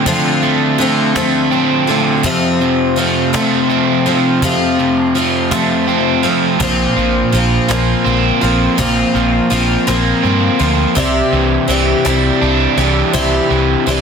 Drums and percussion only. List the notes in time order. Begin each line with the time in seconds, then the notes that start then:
0.06 cajon bass
0.42 cajon slap
0.79 cajon slap
1.16 cajon slap
1.51 cajon slap
1.88 cajon slap
2.24 cajon bass
2.61 cajon slap
2.97 cajon slap
3.34 cajon slap
3.70 cajon slap
4.06 cajon slap
4.42 cajon bass
4.79 cajon slap
5.16 cajon slap
5.51 cajon bass, cajon slap
5.88 cajon slap
6.24 cajon slap
6.61 cajon bass
6.97 cajon slap
7.71 cajon slap
8.06 cajon slap
8.42 cajon slap
8.79 cajon bass
9.16 cajon slap
9.51 cajon slap
9.88 cajon slap
10.24 cajon slap
10.61 cajon slap
10.97 cajon bass
11.33 cajon slap
11.69 cajon slap
12.06 cajon slap
12.42 cajon slap
12.79 cajon slap
13.14 cajon bass
13.51 cajon slap